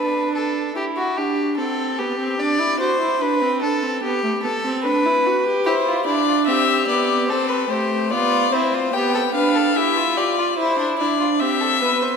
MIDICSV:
0, 0, Header, 1, 4, 480
1, 0, Start_track
1, 0, Key_signature, 0, "major"
1, 0, Tempo, 818554
1, 1403, Time_signature, 4, 2, 24, 8
1, 7135, End_track
2, 0, Start_track
2, 0, Title_t, "Violin"
2, 0, Program_c, 0, 40
2, 3318, Note_on_c, 0, 72, 85
2, 3540, Note_off_c, 0, 72, 0
2, 3557, Note_on_c, 0, 74, 87
2, 3792, Note_off_c, 0, 74, 0
2, 3795, Note_on_c, 0, 76, 97
2, 4031, Note_off_c, 0, 76, 0
2, 4036, Note_on_c, 0, 74, 78
2, 4270, Note_off_c, 0, 74, 0
2, 4273, Note_on_c, 0, 72, 92
2, 4392, Note_on_c, 0, 71, 82
2, 4401, Note_off_c, 0, 72, 0
2, 4515, Note_on_c, 0, 72, 79
2, 4524, Note_off_c, 0, 71, 0
2, 4756, Note_on_c, 0, 74, 95
2, 4765, Note_off_c, 0, 72, 0
2, 4999, Note_on_c, 0, 72, 84
2, 5008, Note_off_c, 0, 74, 0
2, 5241, Note_on_c, 0, 79, 85
2, 5250, Note_off_c, 0, 72, 0
2, 5477, Note_off_c, 0, 79, 0
2, 5480, Note_on_c, 0, 77, 86
2, 5722, Note_on_c, 0, 76, 96
2, 5730, Note_off_c, 0, 77, 0
2, 5965, Note_on_c, 0, 74, 80
2, 5974, Note_off_c, 0, 76, 0
2, 6203, Note_off_c, 0, 74, 0
2, 6206, Note_on_c, 0, 72, 90
2, 6441, Note_off_c, 0, 72, 0
2, 6450, Note_on_c, 0, 74, 79
2, 6688, Note_on_c, 0, 76, 93
2, 6697, Note_off_c, 0, 74, 0
2, 7135, Note_off_c, 0, 76, 0
2, 7135, End_track
3, 0, Start_track
3, 0, Title_t, "Violin"
3, 0, Program_c, 1, 40
3, 0, Note_on_c, 1, 71, 82
3, 202, Note_off_c, 1, 71, 0
3, 205, Note_on_c, 1, 69, 70
3, 441, Note_off_c, 1, 69, 0
3, 446, Note_on_c, 1, 67, 84
3, 493, Note_off_c, 1, 67, 0
3, 566, Note_on_c, 1, 66, 80
3, 685, Note_on_c, 1, 67, 79
3, 694, Note_off_c, 1, 66, 0
3, 921, Note_off_c, 1, 67, 0
3, 924, Note_on_c, 1, 69, 84
3, 1165, Note_on_c, 1, 67, 80
3, 1174, Note_off_c, 1, 69, 0
3, 1403, Note_on_c, 1, 74, 93
3, 1412, Note_off_c, 1, 67, 0
3, 1641, Note_off_c, 1, 74, 0
3, 1645, Note_on_c, 1, 72, 84
3, 1885, Note_on_c, 1, 71, 91
3, 1894, Note_off_c, 1, 72, 0
3, 2122, Note_off_c, 1, 71, 0
3, 2125, Note_on_c, 1, 69, 84
3, 2357, Note_off_c, 1, 69, 0
3, 2366, Note_on_c, 1, 67, 93
3, 2597, Note_off_c, 1, 67, 0
3, 2601, Note_on_c, 1, 69, 90
3, 2835, Note_off_c, 1, 69, 0
3, 2839, Note_on_c, 1, 71, 95
3, 3308, Note_off_c, 1, 71, 0
3, 3320, Note_on_c, 1, 67, 83
3, 3367, Note_off_c, 1, 67, 0
3, 3438, Note_on_c, 1, 65, 71
3, 3555, Note_off_c, 1, 65, 0
3, 3557, Note_on_c, 1, 64, 67
3, 3674, Note_off_c, 1, 64, 0
3, 3680, Note_on_c, 1, 65, 62
3, 3727, Note_off_c, 1, 65, 0
3, 3801, Note_on_c, 1, 67, 85
3, 4280, Note_on_c, 1, 69, 73
3, 4289, Note_off_c, 1, 67, 0
3, 4515, Note_off_c, 1, 69, 0
3, 4519, Note_on_c, 1, 67, 71
3, 4754, Note_off_c, 1, 67, 0
3, 4763, Note_on_c, 1, 65, 80
3, 4996, Note_off_c, 1, 65, 0
3, 5003, Note_on_c, 1, 64, 78
3, 5124, Note_on_c, 1, 65, 68
3, 5133, Note_off_c, 1, 64, 0
3, 5241, Note_off_c, 1, 65, 0
3, 5244, Note_on_c, 1, 67, 87
3, 5360, Note_off_c, 1, 67, 0
3, 5363, Note_on_c, 1, 69, 70
3, 5410, Note_off_c, 1, 69, 0
3, 5483, Note_on_c, 1, 71, 81
3, 5603, Note_on_c, 1, 69, 68
3, 5612, Note_off_c, 1, 71, 0
3, 5727, Note_on_c, 1, 67, 69
3, 5736, Note_off_c, 1, 69, 0
3, 5846, Note_on_c, 1, 65, 74
3, 5855, Note_off_c, 1, 67, 0
3, 5964, Note_on_c, 1, 67, 69
3, 5973, Note_off_c, 1, 65, 0
3, 6084, Note_off_c, 1, 67, 0
3, 6087, Note_on_c, 1, 65, 70
3, 6134, Note_off_c, 1, 65, 0
3, 6204, Note_on_c, 1, 64, 81
3, 6322, Note_off_c, 1, 64, 0
3, 6328, Note_on_c, 1, 62, 71
3, 6442, Note_off_c, 1, 62, 0
3, 6446, Note_on_c, 1, 64, 74
3, 6563, Note_off_c, 1, 64, 0
3, 6566, Note_on_c, 1, 65, 62
3, 6613, Note_off_c, 1, 65, 0
3, 6688, Note_on_c, 1, 67, 68
3, 6809, Note_on_c, 1, 69, 77
3, 6818, Note_off_c, 1, 67, 0
3, 6927, Note_off_c, 1, 69, 0
3, 6931, Note_on_c, 1, 71, 76
3, 7050, Note_on_c, 1, 72, 70
3, 7059, Note_off_c, 1, 71, 0
3, 7135, Note_off_c, 1, 72, 0
3, 7135, End_track
4, 0, Start_track
4, 0, Title_t, "Viola"
4, 0, Program_c, 2, 41
4, 0, Note_on_c, 2, 62, 69
4, 438, Note_off_c, 2, 62, 0
4, 445, Note_on_c, 2, 64, 71
4, 689, Note_on_c, 2, 62, 62
4, 697, Note_off_c, 2, 64, 0
4, 924, Note_on_c, 2, 60, 62
4, 933, Note_off_c, 2, 62, 0
4, 1166, Note_on_c, 2, 59, 58
4, 1175, Note_off_c, 2, 60, 0
4, 1280, Note_off_c, 2, 59, 0
4, 1283, Note_on_c, 2, 60, 67
4, 1400, Note_off_c, 2, 60, 0
4, 1403, Note_on_c, 2, 62, 68
4, 1523, Note_on_c, 2, 64, 65
4, 1532, Note_off_c, 2, 62, 0
4, 1638, Note_off_c, 2, 64, 0
4, 1641, Note_on_c, 2, 66, 71
4, 1756, Note_off_c, 2, 66, 0
4, 1760, Note_on_c, 2, 64, 73
4, 1877, Note_off_c, 2, 64, 0
4, 1882, Note_on_c, 2, 62, 66
4, 2002, Note_on_c, 2, 60, 67
4, 2011, Note_off_c, 2, 62, 0
4, 2123, Note_on_c, 2, 62, 65
4, 2132, Note_off_c, 2, 60, 0
4, 2242, Note_on_c, 2, 60, 60
4, 2251, Note_off_c, 2, 62, 0
4, 2360, Note_off_c, 2, 60, 0
4, 2364, Note_on_c, 2, 59, 71
4, 2478, Note_off_c, 2, 59, 0
4, 2484, Note_on_c, 2, 57, 70
4, 2531, Note_off_c, 2, 57, 0
4, 2604, Note_on_c, 2, 59, 57
4, 2651, Note_off_c, 2, 59, 0
4, 2723, Note_on_c, 2, 60, 75
4, 2842, Note_on_c, 2, 62, 82
4, 2851, Note_off_c, 2, 60, 0
4, 2964, Note_on_c, 2, 64, 70
4, 2973, Note_off_c, 2, 62, 0
4, 3082, Note_on_c, 2, 66, 68
4, 3091, Note_off_c, 2, 64, 0
4, 3200, Note_off_c, 2, 66, 0
4, 3202, Note_on_c, 2, 67, 76
4, 3319, Note_on_c, 2, 64, 82
4, 3328, Note_off_c, 2, 67, 0
4, 3556, Note_off_c, 2, 64, 0
4, 3559, Note_on_c, 2, 62, 81
4, 3797, Note_on_c, 2, 60, 78
4, 3806, Note_off_c, 2, 62, 0
4, 4033, Note_off_c, 2, 60, 0
4, 4036, Note_on_c, 2, 59, 68
4, 4274, Note_on_c, 2, 60, 80
4, 4283, Note_off_c, 2, 59, 0
4, 4510, Note_off_c, 2, 60, 0
4, 4514, Note_on_c, 2, 57, 67
4, 4756, Note_on_c, 2, 59, 82
4, 4765, Note_off_c, 2, 57, 0
4, 4993, Note_off_c, 2, 59, 0
4, 4996, Note_on_c, 2, 60, 66
4, 5233, Note_off_c, 2, 60, 0
4, 5236, Note_on_c, 2, 59, 79
4, 5473, Note_off_c, 2, 59, 0
4, 5480, Note_on_c, 2, 62, 73
4, 5717, Note_off_c, 2, 62, 0
4, 5722, Note_on_c, 2, 64, 72
4, 5966, Note_on_c, 2, 65, 66
4, 5975, Note_off_c, 2, 64, 0
4, 6203, Note_off_c, 2, 65, 0
4, 6206, Note_on_c, 2, 64, 73
4, 6452, Note_on_c, 2, 62, 69
4, 6461, Note_off_c, 2, 64, 0
4, 6689, Note_on_c, 2, 60, 69
4, 6698, Note_off_c, 2, 62, 0
4, 6932, Note_on_c, 2, 59, 68
4, 6941, Note_off_c, 2, 60, 0
4, 7135, Note_off_c, 2, 59, 0
4, 7135, End_track
0, 0, End_of_file